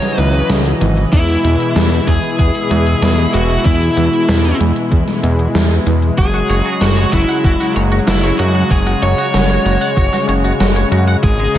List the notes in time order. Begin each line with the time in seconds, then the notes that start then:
Already playing: C#3 E3 F#3 C#5 D#5
0.02 snare, closed hi-hat
0.18 C#2 D#3 B4, closed hi-hat
0.34 closed hi-hat
0.50 C#2 C#3, snare, closed hi-hat
0.65 closed hi-hat
0.81 G#1 E3, closed hi-hat
0.97 closed hi-hat
1.13 E2 B2 E3 E4, kick, closed hi-hat
1.29 closed hi-hat
1.44 E2 B2, closed hi-hat
1.60 closed hi-hat
1.76 E2 G#3, snare, closed hi-hat
1.92 closed hi-hat
2.07 E2 E3 G#4, kick, closed hi-hat
2.24 closed hi-hat
2.39 E2 B2, kick, closed hi-hat
2.55 closed hi-hat
2.71 E2 G#3, closed hi-hat
2.87 closed hi-hat
3.02 E2 E3, snare, closed hi-hat
3.18 closed hi-hat
3.34 E1 B2 F#4, closed hi-hat
3.50 closed hi-hat
3.65 E2 G#3 E4, kick, closed hi-hat
3.81 closed hi-hat
3.97 E2 E3, closed hi-hat
4.13 closed hi-hat
4.29 E2 B2, snare, closed hi-hat
4.45 closed hi-hat
4.60 E2 G#3, closed hi-hat
4.76 closed hi-hat
4.92 E2 E3, kick, closed hi-hat
5.08 snare, closed hi-hat
5.23 E2 B2, closed hi-hat
5.39 closed hi-hat
5.55 E2 G#3, snare, closed hi-hat
5.71 closed hi-hat
5.86 E2 E3, closed hi-hat
6.02 closed hi-hat
6.18 F#1 C#3 F#3 F#4 G#4, kick, closed hi-hat
6.34 F#4, closed hi-hat
6.49 F#1 C#5, closed hi-hat
6.65 F#4, closed hi-hat
6.81 F#1 F#4, snare, closed hi-hat
6.97 C#5, closed hi-hat
7.13 F#1 E4 F#4, kick, closed hi-hat
7.29 F#5, closed hi-hat
7.44 F#1 F#4, kick, closed hi-hat
7.60 F#4, closed hi-hat
7.76 F#1 C#5, closed hi-hat
7.92 F#4, closed hi-hat
8.07 F#1 E4 F#4, snare, closed hi-hat
8.23 C#5, closed hi-hat
8.39 F#2 F#4, closed hi-hat
8.55 F#5, closed hi-hat
8.71 F#1 F#4 G#4, kick, closed hi-hat
8.87 F#4, closed hi-hat
9.02 F#1 C#5, closed hi-hat
9.18 F#4, closed hi-hat
9.34 F#1 F#4, snare, closed hi-hat
9.50 C#5, closed hi-hat
9.65 F#1 F#4, closed hi-hat
9.81 F#5, closed hi-hat
9.97 F#1 F#4, kick, closed hi-hat
10.13 F#4, snare, closed hi-hat
10.28 F#1 C#5, closed hi-hat
10.44 F#4, closed hi-hat
10.60 F#1 F#4, snare, closed hi-hat
10.76 C#5, closed hi-hat
10.91 F#2 F#4, closed hi-hat
11.08 F#5, closed hi-hat
11.23 G#1 G#3 G#4 D#5, kick, closed hi-hat
11.39 G#3, closed hi-hat
11.55 G#1 D#4, closed hi-hat